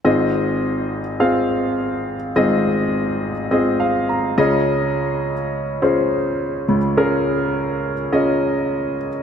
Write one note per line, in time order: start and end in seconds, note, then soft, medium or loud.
0.05 2.32 G#1 medium
0.05 2.32 G#2 medium
0.05 1.00 C4 medium
0.05 1.00 F4 medium
0.05 1.00 G#4 medium
0.05 1.00 D#5 medium
1.20 2.15 C4 medium
1.20 2.15 F4 soft
1.20 2.15 G#4 medium
1.20 2.16 F5 medium
2.36 4.34 G#1 medium
2.36 4.34 G#2 medium
2.36 3.31 C4 medium
2.36 3.31 F4 medium
2.36 3.31 G#4 medium
2.36 3.31 D#5 medium
3.51 4.38 C4 medium
3.51 4.36 F4 soft
3.51 4.36 G#4 soft
3.51 4.36 D#5 medium
3.80 4.07 F5 medium
4.09 4.63 A#5 medium
4.38 6.65 C#2 medium
4.38 6.65 C#3 medium
4.38 5.33 C#4 medium
4.38 5.33 F4 medium
4.38 5.33 G#4 medium
4.38 5.33 D#5 medium
5.82 6.77 C#4 medium
5.82 6.77 F4 soft
5.82 6.77 G#4 soft
5.82 6.77 C5 medium
6.68 8.95 C#2 medium
6.68 8.95 C#3 medium
6.97 7.93 C#4 medium
6.97 7.93 F4 medium
6.97 7.93 G#4 medium
6.97 7.93 A#4 medium
8.13 9.08 C#4 medium
8.13 9.08 F4 medium
8.13 9.08 G#4 soft
8.13 9.08 D#5 medium